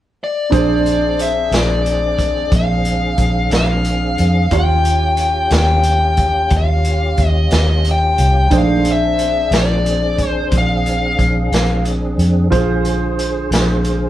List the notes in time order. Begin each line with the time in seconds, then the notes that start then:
0.24 D5
0.50 A#1 C4 D4 G#4 C5, kick, closed hi-hat
0.86 closed hi-hat
1.19 E5, closed hi-hat
1.51 A#1, snare, closed hi-hat
1.56 D5
1.86 closed hi-hat
2.19 kick, closed hi-hat
2.52 A#1, kick, closed hi-hat
2.56 F5
2.85 closed hi-hat
3.18 A#1, kick, closed hi-hat
3.51 A#1, snare, closed hi-hat
3.56 F5
3.85 closed hi-hat
4.18 F2, closed hi-hat
4.51 D#2 C#4 F4 G4 C#5, kick, closed hi-hat
4.56 G5
4.85 closed hi-hat
5.17 closed hi-hat
5.51 D#2, snare, closed hi-hat
5.58 G5
5.83 closed hi-hat
6.17 kick, closed hi-hat
6.50 D#2, kick, closed hi-hat
6.57 F5
6.85 closed hi-hat
7.18 D#2, kick, closed hi-hat
7.27 D#5
7.51 D#2, snare, closed hi-hat
7.55 D#5
7.85 closed hi-hat
7.91 G5
8.18 C2, closed hi-hat
8.50 A#1 D#3 A3 D4 G#4 C5, kick, closed hi-hat
8.58 F5
8.84 C4 D4 G#4, closed hi-hat
8.92 E5
9.19 closed hi-hat
9.51 A#1, snare, closed hi-hat
9.58 D5
9.86 closed hi-hat
10.18 kick, closed hi-hat
10.28 C5
10.51 A#1, kick, closed hi-hat
10.58 F5
10.86 closed hi-hat
11.19 A#1, kick, closed hi-hat
11.52 A#1, snare, closed hi-hat
11.85 closed hi-hat
12.18 F2, closed hi-hat
12.50 A#1 D3 F4 G#4 C5, kick, closed hi-hat
12.85 closed hi-hat
13.19 closed hi-hat
13.51 A#1, snare, closed hi-hat
13.85 closed hi-hat